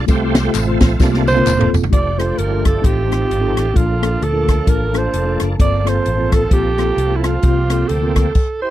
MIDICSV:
0, 0, Header, 1, 7, 480
1, 0, Start_track
1, 0, Key_signature, -1, "major"
1, 0, Tempo, 459067
1, 87, Time_signature, 4, 2, 24, 8
1, 9100, End_track
2, 0, Start_track
2, 0, Title_t, "Alto saxophone"
2, 0, Program_c, 0, 65
2, 1338, Note_on_c, 0, 72, 114
2, 1781, Note_off_c, 0, 72, 0
2, 2012, Note_on_c, 0, 74, 95
2, 2282, Note_on_c, 0, 72, 81
2, 2298, Note_off_c, 0, 74, 0
2, 2489, Note_on_c, 0, 70, 86
2, 2504, Note_off_c, 0, 72, 0
2, 2771, Note_off_c, 0, 70, 0
2, 2781, Note_on_c, 0, 69, 81
2, 2983, Note_on_c, 0, 67, 83
2, 2999, Note_off_c, 0, 69, 0
2, 3931, Note_on_c, 0, 65, 76
2, 3947, Note_off_c, 0, 67, 0
2, 4424, Note_on_c, 0, 69, 86
2, 4440, Note_off_c, 0, 65, 0
2, 4907, Note_on_c, 0, 70, 77
2, 4922, Note_off_c, 0, 69, 0
2, 5203, Note_on_c, 0, 72, 77
2, 5219, Note_off_c, 0, 70, 0
2, 5670, Note_off_c, 0, 72, 0
2, 5868, Note_on_c, 0, 74, 99
2, 6045, Note_off_c, 0, 74, 0
2, 6045, Note_on_c, 0, 74, 76
2, 6153, Note_on_c, 0, 72, 84
2, 6169, Note_off_c, 0, 74, 0
2, 6619, Note_off_c, 0, 72, 0
2, 6626, Note_on_c, 0, 69, 80
2, 6834, Note_on_c, 0, 67, 89
2, 6850, Note_off_c, 0, 69, 0
2, 7482, Note_on_c, 0, 64, 54
2, 7497, Note_off_c, 0, 67, 0
2, 7587, Note_on_c, 0, 65, 89
2, 7603, Note_off_c, 0, 64, 0
2, 8239, Note_on_c, 0, 69, 79
2, 8255, Note_off_c, 0, 65, 0
2, 9003, Note_off_c, 0, 69, 0
2, 9012, Note_on_c, 0, 72, 74
2, 9100, Note_off_c, 0, 72, 0
2, 9100, End_track
3, 0, Start_track
3, 0, Title_t, "Tine electric piano"
3, 0, Program_c, 1, 4
3, 66, Note_on_c, 1, 57, 72
3, 75, Note_on_c, 1, 60, 71
3, 77, Note_on_c, 1, 65, 71
3, 80, Note_on_c, 1, 48, 62
3, 84, Note_on_c, 1, 69, 75
3, 364, Note_off_c, 1, 57, 0
3, 368, Note_off_c, 1, 60, 0
3, 369, Note_off_c, 1, 65, 0
3, 372, Note_off_c, 1, 69, 0
3, 453, Note_on_c, 1, 57, 68
3, 462, Note_on_c, 1, 60, 61
3, 468, Note_on_c, 1, 65, 62
3, 475, Note_on_c, 1, 69, 77
3, 611, Note_off_c, 1, 57, 0
3, 616, Note_off_c, 1, 60, 0
3, 619, Note_off_c, 1, 65, 0
3, 623, Note_off_c, 1, 69, 0
3, 692, Note_on_c, 1, 57, 71
3, 701, Note_on_c, 1, 60, 68
3, 704, Note_on_c, 1, 65, 71
3, 704, Note_on_c, 1, 72, 83
3, 804, Note_off_c, 1, 48, 0
3, 946, Note_off_c, 1, 57, 0
3, 950, Note_off_c, 1, 60, 0
3, 951, Note_off_c, 1, 72, 0
3, 952, Note_off_c, 1, 65, 0
3, 1038, Note_on_c, 1, 58, 80
3, 1040, Note_on_c, 1, 60, 68
3, 1041, Note_on_c, 1, 48, 67
3, 1047, Note_on_c, 1, 65, 69
3, 1051, Note_on_c, 1, 67, 85
3, 1330, Note_off_c, 1, 58, 0
3, 1331, Note_off_c, 1, 60, 0
3, 1334, Note_off_c, 1, 65, 0
3, 1336, Note_off_c, 1, 67, 0
3, 1411, Note_on_c, 1, 58, 90
3, 1415, Note_on_c, 1, 60, 92
3, 1420, Note_on_c, 1, 65, 87
3, 1432, Note_on_c, 1, 70, 100
3, 1571, Note_off_c, 1, 58, 0
3, 1573, Note_off_c, 1, 60, 0
3, 1576, Note_off_c, 1, 65, 0
3, 1582, Note_off_c, 1, 70, 0
3, 1645, Note_on_c, 1, 58, 78
3, 1654, Note_on_c, 1, 60, 83
3, 1655, Note_on_c, 1, 65, 79
3, 1662, Note_on_c, 1, 69, 93
3, 1765, Note_off_c, 1, 48, 0
3, 1903, Note_off_c, 1, 58, 0
3, 1907, Note_off_c, 1, 60, 0
3, 1908, Note_off_c, 1, 65, 0
3, 1911, Note_off_c, 1, 69, 0
3, 1984, Note_on_c, 1, 57, 62
3, 1991, Note_on_c, 1, 62, 57
3, 1998, Note_on_c, 1, 65, 55
3, 2003, Note_on_c, 1, 67, 64
3, 2189, Note_off_c, 1, 57, 0
3, 2193, Note_off_c, 1, 62, 0
3, 2196, Note_off_c, 1, 65, 0
3, 2199, Note_off_c, 1, 67, 0
3, 2276, Note_on_c, 1, 57, 57
3, 2286, Note_on_c, 1, 65, 59
3, 2287, Note_on_c, 1, 62, 57
3, 2292, Note_on_c, 1, 69, 71
3, 2490, Note_off_c, 1, 57, 0
3, 2494, Note_off_c, 1, 65, 0
3, 2495, Note_off_c, 1, 62, 0
3, 2498, Note_off_c, 1, 69, 0
3, 2614, Note_on_c, 1, 57, 66
3, 2623, Note_on_c, 1, 62, 55
3, 2627, Note_on_c, 1, 65, 59
3, 2639, Note_on_c, 1, 69, 65
3, 2868, Note_off_c, 1, 57, 0
3, 2873, Note_off_c, 1, 62, 0
3, 2874, Note_off_c, 1, 65, 0
3, 2880, Note_off_c, 1, 69, 0
3, 2945, Note_on_c, 1, 60, 64
3, 2947, Note_on_c, 1, 63, 58
3, 2954, Note_on_c, 1, 45, 60
3, 2954, Note_on_c, 1, 65, 60
3, 2965, Note_on_c, 1, 69, 68
3, 3151, Note_off_c, 1, 60, 0
3, 3152, Note_off_c, 1, 63, 0
3, 3155, Note_off_c, 1, 65, 0
3, 3161, Note_off_c, 1, 69, 0
3, 3227, Note_on_c, 1, 60, 66
3, 3229, Note_on_c, 1, 63, 58
3, 3239, Note_on_c, 1, 65, 58
3, 3249, Note_on_c, 1, 67, 65
3, 3446, Note_off_c, 1, 60, 0
3, 3447, Note_off_c, 1, 63, 0
3, 3452, Note_off_c, 1, 65, 0
3, 3457, Note_off_c, 1, 67, 0
3, 3559, Note_on_c, 1, 60, 72
3, 3562, Note_on_c, 1, 63, 60
3, 3571, Note_on_c, 1, 65, 66
3, 3574, Note_on_c, 1, 69, 80
3, 3684, Note_off_c, 1, 45, 0
3, 3822, Note_off_c, 1, 60, 0
3, 3823, Note_off_c, 1, 63, 0
3, 3828, Note_off_c, 1, 65, 0
3, 3829, Note_off_c, 1, 69, 0
3, 3900, Note_on_c, 1, 62, 60
3, 3901, Note_on_c, 1, 58, 64
3, 3906, Note_on_c, 1, 65, 57
3, 3909, Note_on_c, 1, 46, 52
3, 3914, Note_on_c, 1, 69, 66
3, 4109, Note_off_c, 1, 62, 0
3, 4110, Note_off_c, 1, 58, 0
3, 4112, Note_off_c, 1, 65, 0
3, 4117, Note_off_c, 1, 69, 0
3, 4202, Note_on_c, 1, 58, 67
3, 4203, Note_on_c, 1, 62, 57
3, 4204, Note_on_c, 1, 65, 58
3, 4214, Note_on_c, 1, 69, 71
3, 4414, Note_off_c, 1, 58, 0
3, 4415, Note_off_c, 1, 62, 0
3, 4415, Note_off_c, 1, 65, 0
3, 4420, Note_off_c, 1, 69, 0
3, 4521, Note_on_c, 1, 58, 60
3, 4524, Note_on_c, 1, 62, 57
3, 4533, Note_on_c, 1, 65, 57
3, 4537, Note_on_c, 1, 70, 67
3, 4642, Note_off_c, 1, 46, 0
3, 4784, Note_off_c, 1, 58, 0
3, 4785, Note_off_c, 1, 62, 0
3, 4789, Note_off_c, 1, 65, 0
3, 4791, Note_off_c, 1, 70, 0
3, 4870, Note_on_c, 1, 58, 69
3, 4878, Note_on_c, 1, 65, 65
3, 4879, Note_on_c, 1, 62, 65
3, 4884, Note_on_c, 1, 70, 71
3, 5075, Note_off_c, 1, 58, 0
3, 5079, Note_off_c, 1, 62, 0
3, 5079, Note_off_c, 1, 65, 0
3, 5082, Note_off_c, 1, 70, 0
3, 5152, Note_on_c, 1, 58, 64
3, 5160, Note_on_c, 1, 62, 58
3, 5163, Note_on_c, 1, 65, 60
3, 5165, Note_on_c, 1, 69, 75
3, 5370, Note_off_c, 1, 58, 0
3, 5374, Note_off_c, 1, 62, 0
3, 5376, Note_off_c, 1, 65, 0
3, 5376, Note_off_c, 1, 69, 0
3, 5483, Note_on_c, 1, 58, 65
3, 5493, Note_on_c, 1, 62, 55
3, 5496, Note_on_c, 1, 69, 66
3, 5499, Note_on_c, 1, 65, 55
3, 5745, Note_off_c, 1, 58, 0
3, 5750, Note_off_c, 1, 62, 0
3, 5751, Note_off_c, 1, 69, 0
3, 5753, Note_off_c, 1, 65, 0
3, 5840, Note_on_c, 1, 58, 61
3, 5841, Note_on_c, 1, 43, 55
3, 5845, Note_on_c, 1, 60, 55
3, 5850, Note_on_c, 1, 65, 55
3, 5853, Note_on_c, 1, 69, 75
3, 6040, Note_off_c, 1, 58, 0
3, 6043, Note_off_c, 1, 60, 0
3, 6045, Note_off_c, 1, 65, 0
3, 6047, Note_off_c, 1, 69, 0
3, 6106, Note_on_c, 1, 58, 67
3, 6115, Note_on_c, 1, 65, 59
3, 6116, Note_on_c, 1, 60, 61
3, 6120, Note_on_c, 1, 69, 72
3, 6327, Note_off_c, 1, 58, 0
3, 6331, Note_off_c, 1, 65, 0
3, 6332, Note_off_c, 1, 60, 0
3, 6334, Note_off_c, 1, 69, 0
3, 6461, Note_on_c, 1, 60, 57
3, 6464, Note_on_c, 1, 58, 62
3, 6469, Note_on_c, 1, 65, 59
3, 6473, Note_on_c, 1, 69, 70
3, 6568, Note_off_c, 1, 43, 0
3, 6713, Note_off_c, 1, 60, 0
3, 6715, Note_off_c, 1, 58, 0
3, 6717, Note_off_c, 1, 65, 0
3, 6719, Note_off_c, 1, 69, 0
3, 6808, Note_on_c, 1, 58, 62
3, 6819, Note_on_c, 1, 60, 59
3, 6824, Note_on_c, 1, 65, 59
3, 6828, Note_on_c, 1, 67, 73
3, 7004, Note_off_c, 1, 58, 0
3, 7009, Note_off_c, 1, 60, 0
3, 7012, Note_off_c, 1, 65, 0
3, 7014, Note_off_c, 1, 67, 0
3, 7086, Note_on_c, 1, 58, 66
3, 7093, Note_on_c, 1, 65, 57
3, 7095, Note_on_c, 1, 60, 62
3, 7097, Note_on_c, 1, 69, 69
3, 7296, Note_off_c, 1, 58, 0
3, 7300, Note_off_c, 1, 65, 0
3, 7301, Note_off_c, 1, 60, 0
3, 7302, Note_off_c, 1, 69, 0
3, 7428, Note_on_c, 1, 58, 63
3, 7428, Note_on_c, 1, 60, 55
3, 7435, Note_on_c, 1, 65, 53
3, 7444, Note_on_c, 1, 69, 67
3, 7676, Note_off_c, 1, 58, 0
3, 7676, Note_off_c, 1, 60, 0
3, 7679, Note_off_c, 1, 65, 0
3, 7684, Note_off_c, 1, 69, 0
3, 7761, Note_on_c, 1, 58, 62
3, 7774, Note_on_c, 1, 60, 59
3, 7775, Note_on_c, 1, 48, 54
3, 7775, Note_on_c, 1, 65, 56
3, 7780, Note_on_c, 1, 67, 73
3, 7959, Note_off_c, 1, 58, 0
3, 7966, Note_off_c, 1, 60, 0
3, 7966, Note_off_c, 1, 65, 0
3, 7968, Note_off_c, 1, 67, 0
3, 8044, Note_on_c, 1, 58, 61
3, 8056, Note_on_c, 1, 60, 60
3, 8058, Note_on_c, 1, 65, 55
3, 8065, Note_on_c, 1, 69, 70
3, 8254, Note_off_c, 1, 58, 0
3, 8260, Note_off_c, 1, 60, 0
3, 8261, Note_off_c, 1, 65, 0
3, 8264, Note_off_c, 1, 69, 0
3, 8385, Note_on_c, 1, 58, 61
3, 8395, Note_on_c, 1, 60, 57
3, 8400, Note_on_c, 1, 65, 57
3, 8407, Note_on_c, 1, 70, 68
3, 8491, Note_off_c, 1, 48, 0
3, 8632, Note_off_c, 1, 58, 0
3, 8637, Note_off_c, 1, 60, 0
3, 8639, Note_off_c, 1, 65, 0
3, 8643, Note_off_c, 1, 70, 0
3, 9100, End_track
4, 0, Start_track
4, 0, Title_t, "French horn section"
4, 0, Program_c, 2, 60
4, 2021, Note_on_c, 2, 62, 63
4, 2023, Note_on_c, 2, 57, 68
4, 2024, Note_on_c, 2, 55, 66
4, 2025, Note_on_c, 2, 65, 74
4, 2967, Note_off_c, 2, 62, 0
4, 2969, Note_off_c, 2, 55, 0
4, 2976, Note_on_c, 2, 60, 56
4, 2980, Note_on_c, 2, 63, 55
4, 3899, Note_off_c, 2, 65, 0
4, 3905, Note_on_c, 2, 69, 85
4, 3911, Note_on_c, 2, 62, 67
4, 3912, Note_on_c, 2, 65, 68
4, 3917, Note_on_c, 2, 58, 77
4, 3921, Note_off_c, 2, 57, 0
4, 3926, Note_off_c, 2, 60, 0
4, 3928, Note_off_c, 2, 63, 0
4, 5822, Note_off_c, 2, 69, 0
4, 5825, Note_off_c, 2, 62, 0
4, 5865, Note_on_c, 2, 69, 85
4, 5874, Note_on_c, 2, 60, 68
4, 7759, Note_off_c, 2, 69, 0
4, 7793, Note_on_c, 2, 67, 82
4, 8676, Note_off_c, 2, 65, 0
4, 8679, Note_off_c, 2, 58, 0
4, 8710, Note_off_c, 2, 60, 0
4, 8729, Note_off_c, 2, 67, 0
4, 9100, End_track
5, 0, Start_track
5, 0, Title_t, "Tonewheel organ"
5, 0, Program_c, 3, 16
5, 87, Note_on_c, 3, 57, 54
5, 95, Note_on_c, 3, 60, 64
5, 97, Note_on_c, 3, 65, 56
5, 103, Note_on_c, 3, 67, 92
5, 560, Note_off_c, 3, 60, 0
5, 568, Note_off_c, 3, 57, 0
5, 570, Note_off_c, 3, 65, 0
5, 572, Note_on_c, 3, 60, 56
5, 581, Note_on_c, 3, 57, 51
5, 582, Note_on_c, 3, 65, 78
5, 589, Note_off_c, 3, 67, 0
5, 1061, Note_on_c, 3, 58, 55
5, 1062, Note_off_c, 3, 65, 0
5, 1064, Note_on_c, 3, 62, 50
5, 1074, Note_on_c, 3, 65, 59
5, 1489, Note_off_c, 3, 60, 0
5, 1493, Note_off_c, 3, 57, 0
5, 1779, Note_off_c, 3, 58, 0
5, 1781, Note_off_c, 3, 62, 0
5, 1786, Note_off_c, 3, 65, 0
5, 2020, Note_on_c, 3, 53, 54
5, 2020, Note_on_c, 3, 65, 47
5, 2024, Note_on_c, 3, 57, 49
5, 2025, Note_on_c, 3, 62, 48
5, 2071, Note_on_c, 3, 67, 64
5, 2082, Note_off_c, 3, 65, 0
5, 2957, Note_off_c, 3, 53, 0
5, 2959, Note_off_c, 3, 57, 0
5, 2959, Note_off_c, 3, 62, 0
5, 2970, Note_on_c, 3, 60, 48
5, 2977, Note_on_c, 3, 63, 53
5, 2978, Note_on_c, 3, 53, 57
5, 2982, Note_on_c, 3, 68, 46
5, 2983, Note_off_c, 3, 67, 0
5, 3031, Note_on_c, 3, 69, 58
5, 3044, Note_off_c, 3, 68, 0
5, 3913, Note_off_c, 3, 60, 0
5, 3913, Note_off_c, 3, 69, 0
5, 3917, Note_off_c, 3, 53, 0
5, 3917, Note_off_c, 3, 63, 0
5, 3924, Note_on_c, 3, 62, 50
5, 3925, Note_on_c, 3, 69, 65
5, 3930, Note_on_c, 3, 58, 50
5, 3933, Note_on_c, 3, 53, 57
5, 5812, Note_off_c, 3, 62, 0
5, 5813, Note_off_c, 3, 69, 0
5, 5815, Note_off_c, 3, 58, 0
5, 5817, Note_off_c, 3, 53, 0
5, 5861, Note_on_c, 3, 60, 51
5, 5861, Note_on_c, 3, 69, 61
5, 5862, Note_on_c, 3, 53, 58
5, 5863, Note_on_c, 3, 58, 52
5, 7737, Note_off_c, 3, 69, 0
5, 7738, Note_off_c, 3, 53, 0
5, 7738, Note_off_c, 3, 58, 0
5, 7738, Note_off_c, 3, 60, 0
5, 7770, Note_on_c, 3, 67, 63
5, 7771, Note_on_c, 3, 53, 56
5, 7772, Note_on_c, 3, 58, 50
5, 7775, Note_on_c, 3, 60, 52
5, 8708, Note_off_c, 3, 67, 0
5, 8709, Note_off_c, 3, 53, 0
5, 8709, Note_off_c, 3, 58, 0
5, 8711, Note_off_c, 3, 60, 0
5, 9003, Note_on_c, 3, 72, 112
5, 9010, Note_on_c, 3, 64, 68
5, 9019, Note_on_c, 3, 67, 72
5, 9100, Note_off_c, 3, 64, 0
5, 9100, Note_off_c, 3, 67, 0
5, 9100, Note_off_c, 3, 72, 0
5, 9100, End_track
6, 0, Start_track
6, 0, Title_t, "Fingered electric bass"
6, 0, Program_c, 4, 33
6, 84, Note_on_c, 4, 36, 112
6, 494, Note_off_c, 4, 36, 0
6, 569, Note_on_c, 4, 33, 87
6, 808, Note_off_c, 4, 33, 0
6, 853, Note_on_c, 4, 34, 96
6, 1020, Note_off_c, 4, 34, 0
6, 1043, Note_on_c, 4, 36, 107
6, 1453, Note_off_c, 4, 36, 0
6, 1535, Note_on_c, 4, 27, 91
6, 1772, Note_off_c, 4, 27, 0
6, 1808, Note_on_c, 4, 28, 92
6, 1978, Note_off_c, 4, 28, 0
6, 2012, Note_on_c, 4, 29, 95
6, 2419, Note_off_c, 4, 29, 0
6, 2490, Note_on_c, 4, 31, 67
6, 2899, Note_off_c, 4, 31, 0
6, 2975, Note_on_c, 4, 33, 88
6, 3382, Note_off_c, 4, 33, 0
6, 3455, Note_on_c, 4, 32, 76
6, 3694, Note_off_c, 4, 32, 0
6, 3738, Note_on_c, 4, 33, 80
6, 3905, Note_off_c, 4, 33, 0
6, 3935, Note_on_c, 4, 34, 98
6, 4343, Note_off_c, 4, 34, 0
6, 4404, Note_on_c, 4, 38, 76
6, 4817, Note_off_c, 4, 38, 0
6, 4886, Note_on_c, 4, 33, 77
6, 5298, Note_off_c, 4, 33, 0
6, 5368, Note_on_c, 4, 29, 76
6, 5611, Note_off_c, 4, 29, 0
6, 5661, Note_on_c, 4, 30, 85
6, 5828, Note_off_c, 4, 30, 0
6, 5852, Note_on_c, 4, 31, 95
6, 6261, Note_off_c, 4, 31, 0
6, 6339, Note_on_c, 4, 33, 82
6, 6745, Note_off_c, 4, 33, 0
6, 6808, Note_on_c, 4, 34, 84
6, 7219, Note_off_c, 4, 34, 0
6, 7286, Note_on_c, 4, 36, 77
6, 7696, Note_off_c, 4, 36, 0
6, 7775, Note_on_c, 4, 36, 91
6, 8181, Note_off_c, 4, 36, 0
6, 8260, Note_on_c, 4, 38, 76
6, 8662, Note_off_c, 4, 38, 0
6, 9100, End_track
7, 0, Start_track
7, 0, Title_t, "Drums"
7, 82, Note_on_c, 9, 54, 77
7, 86, Note_on_c, 9, 51, 77
7, 88, Note_on_c, 9, 36, 118
7, 187, Note_off_c, 9, 54, 0
7, 190, Note_off_c, 9, 51, 0
7, 192, Note_off_c, 9, 36, 0
7, 364, Note_on_c, 9, 38, 106
7, 365, Note_on_c, 9, 51, 67
7, 376, Note_on_c, 9, 54, 62
7, 469, Note_off_c, 9, 38, 0
7, 469, Note_off_c, 9, 51, 0
7, 480, Note_off_c, 9, 54, 0
7, 567, Note_on_c, 9, 51, 70
7, 572, Note_on_c, 9, 39, 107
7, 572, Note_on_c, 9, 54, 108
7, 672, Note_off_c, 9, 51, 0
7, 676, Note_off_c, 9, 39, 0
7, 676, Note_off_c, 9, 54, 0
7, 842, Note_on_c, 9, 51, 56
7, 844, Note_on_c, 9, 38, 104
7, 848, Note_on_c, 9, 36, 99
7, 852, Note_on_c, 9, 54, 50
7, 946, Note_off_c, 9, 51, 0
7, 949, Note_off_c, 9, 38, 0
7, 953, Note_off_c, 9, 36, 0
7, 956, Note_off_c, 9, 54, 0
7, 1042, Note_on_c, 9, 54, 76
7, 1045, Note_on_c, 9, 36, 115
7, 1050, Note_on_c, 9, 38, 62
7, 1146, Note_off_c, 9, 54, 0
7, 1150, Note_off_c, 9, 36, 0
7, 1154, Note_off_c, 9, 38, 0
7, 1191, Note_on_c, 9, 38, 54
7, 1295, Note_off_c, 9, 38, 0
7, 1333, Note_on_c, 9, 54, 52
7, 1337, Note_on_c, 9, 48, 70
7, 1438, Note_off_c, 9, 54, 0
7, 1441, Note_off_c, 9, 48, 0
7, 1441, Note_on_c, 9, 48, 63
7, 1533, Note_on_c, 9, 47, 89
7, 1534, Note_on_c, 9, 39, 96
7, 1534, Note_on_c, 9, 54, 101
7, 1545, Note_off_c, 9, 48, 0
7, 1638, Note_off_c, 9, 47, 0
7, 1639, Note_off_c, 9, 39, 0
7, 1639, Note_off_c, 9, 54, 0
7, 1678, Note_on_c, 9, 45, 87
7, 1783, Note_off_c, 9, 45, 0
7, 1821, Note_on_c, 9, 43, 99
7, 1822, Note_on_c, 9, 54, 62
7, 1919, Note_off_c, 9, 43, 0
7, 1919, Note_on_c, 9, 43, 103
7, 1927, Note_off_c, 9, 54, 0
7, 2014, Note_on_c, 9, 36, 104
7, 2015, Note_on_c, 9, 42, 81
7, 2024, Note_off_c, 9, 43, 0
7, 2119, Note_off_c, 9, 36, 0
7, 2119, Note_off_c, 9, 42, 0
7, 2295, Note_on_c, 9, 37, 96
7, 2296, Note_on_c, 9, 42, 65
7, 2400, Note_off_c, 9, 37, 0
7, 2400, Note_off_c, 9, 42, 0
7, 2493, Note_on_c, 9, 42, 78
7, 2598, Note_off_c, 9, 42, 0
7, 2772, Note_on_c, 9, 42, 68
7, 2773, Note_on_c, 9, 36, 74
7, 2774, Note_on_c, 9, 37, 88
7, 2876, Note_off_c, 9, 42, 0
7, 2878, Note_off_c, 9, 36, 0
7, 2879, Note_off_c, 9, 37, 0
7, 2970, Note_on_c, 9, 36, 98
7, 2975, Note_on_c, 9, 42, 88
7, 3074, Note_off_c, 9, 36, 0
7, 3079, Note_off_c, 9, 42, 0
7, 3259, Note_on_c, 9, 42, 54
7, 3266, Note_on_c, 9, 37, 90
7, 3364, Note_off_c, 9, 42, 0
7, 3370, Note_off_c, 9, 37, 0
7, 3463, Note_on_c, 9, 42, 80
7, 3567, Note_off_c, 9, 42, 0
7, 3733, Note_on_c, 9, 42, 59
7, 3734, Note_on_c, 9, 37, 89
7, 3837, Note_off_c, 9, 42, 0
7, 3839, Note_off_c, 9, 37, 0
7, 3932, Note_on_c, 9, 36, 105
7, 3936, Note_on_c, 9, 42, 84
7, 4036, Note_off_c, 9, 36, 0
7, 4041, Note_off_c, 9, 42, 0
7, 4213, Note_on_c, 9, 37, 100
7, 4214, Note_on_c, 9, 42, 62
7, 4318, Note_off_c, 9, 37, 0
7, 4319, Note_off_c, 9, 42, 0
7, 4417, Note_on_c, 9, 42, 77
7, 4521, Note_off_c, 9, 42, 0
7, 4689, Note_on_c, 9, 42, 61
7, 4690, Note_on_c, 9, 36, 74
7, 4691, Note_on_c, 9, 37, 87
7, 4794, Note_off_c, 9, 42, 0
7, 4795, Note_off_c, 9, 36, 0
7, 4796, Note_off_c, 9, 37, 0
7, 4886, Note_on_c, 9, 36, 94
7, 4886, Note_on_c, 9, 42, 80
7, 4990, Note_off_c, 9, 36, 0
7, 4990, Note_off_c, 9, 42, 0
7, 5166, Note_on_c, 9, 42, 52
7, 5173, Note_on_c, 9, 37, 87
7, 5270, Note_off_c, 9, 42, 0
7, 5277, Note_off_c, 9, 37, 0
7, 5370, Note_on_c, 9, 42, 81
7, 5475, Note_off_c, 9, 42, 0
7, 5643, Note_on_c, 9, 42, 57
7, 5645, Note_on_c, 9, 37, 82
7, 5748, Note_off_c, 9, 42, 0
7, 5749, Note_off_c, 9, 37, 0
7, 5851, Note_on_c, 9, 36, 106
7, 5854, Note_on_c, 9, 42, 83
7, 5955, Note_off_c, 9, 36, 0
7, 5959, Note_off_c, 9, 42, 0
7, 6135, Note_on_c, 9, 37, 97
7, 6136, Note_on_c, 9, 42, 64
7, 6240, Note_off_c, 9, 37, 0
7, 6241, Note_off_c, 9, 42, 0
7, 6333, Note_on_c, 9, 42, 75
7, 6437, Note_off_c, 9, 42, 0
7, 6609, Note_on_c, 9, 42, 60
7, 6612, Note_on_c, 9, 36, 77
7, 6612, Note_on_c, 9, 37, 85
7, 6714, Note_off_c, 9, 42, 0
7, 6716, Note_off_c, 9, 36, 0
7, 6716, Note_off_c, 9, 37, 0
7, 6808, Note_on_c, 9, 36, 101
7, 6810, Note_on_c, 9, 42, 79
7, 6912, Note_off_c, 9, 36, 0
7, 6915, Note_off_c, 9, 42, 0
7, 7091, Note_on_c, 9, 42, 56
7, 7098, Note_on_c, 9, 37, 88
7, 7196, Note_off_c, 9, 42, 0
7, 7203, Note_off_c, 9, 37, 0
7, 7300, Note_on_c, 9, 42, 80
7, 7404, Note_off_c, 9, 42, 0
7, 7568, Note_on_c, 9, 42, 57
7, 7570, Note_on_c, 9, 37, 89
7, 7673, Note_off_c, 9, 42, 0
7, 7674, Note_off_c, 9, 37, 0
7, 7765, Note_on_c, 9, 42, 74
7, 7774, Note_on_c, 9, 36, 105
7, 7869, Note_off_c, 9, 42, 0
7, 7878, Note_off_c, 9, 36, 0
7, 8051, Note_on_c, 9, 37, 105
7, 8052, Note_on_c, 9, 42, 60
7, 8155, Note_off_c, 9, 37, 0
7, 8156, Note_off_c, 9, 42, 0
7, 8252, Note_on_c, 9, 42, 76
7, 8357, Note_off_c, 9, 42, 0
7, 8530, Note_on_c, 9, 42, 61
7, 8532, Note_on_c, 9, 37, 87
7, 8535, Note_on_c, 9, 36, 80
7, 8634, Note_off_c, 9, 42, 0
7, 8636, Note_off_c, 9, 37, 0
7, 8639, Note_off_c, 9, 36, 0
7, 8729, Note_on_c, 9, 49, 78
7, 8734, Note_on_c, 9, 36, 100
7, 8834, Note_off_c, 9, 49, 0
7, 8839, Note_off_c, 9, 36, 0
7, 9100, End_track
0, 0, End_of_file